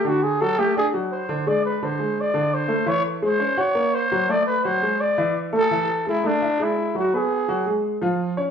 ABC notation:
X:1
M:4/4
L:1/8
Q:1/4=169
K:Dlyd
V:1 name="Trumpet"
F G A =G ^G z =c2 | d B =c2 d2 c2 | c A =c2 ^c2 =c2 | d B =c2 d2 z A- |
A2 E D2 E2 F | G4 z4 |]
V:2 name="Grand piano"
[D,D]2 [F,F] [A,A] [Dd] [F,F]2 [D,D] | [G,G]2 [D,D] [G,G]2 [D,D]2 [A,A] | [E,E]2 [G,G] [Cc] [Ff] [^A,^A]2 [F,F] | [A,A]2 [F,F] [G,G]2 [E,E]2 [A,A] |
[E,E]2 [G,G] [A,A] [Ee] [G,G]2 [F,F] | [B,B]2 [F,F] [G,G]2 [^E,^E]2 [Cc] |]